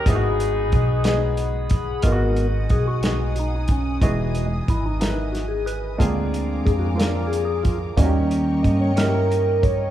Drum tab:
HH |xxxxxx|xxxxxx|xxxxxx|xxxxxx|
SD |---o--|---o--|---oo-|---o--|
BD |o-o--o|o-o--o|o-o---|o-o--o|

HH |xxxxxx|
SD |---o--|
BD |o-o--o|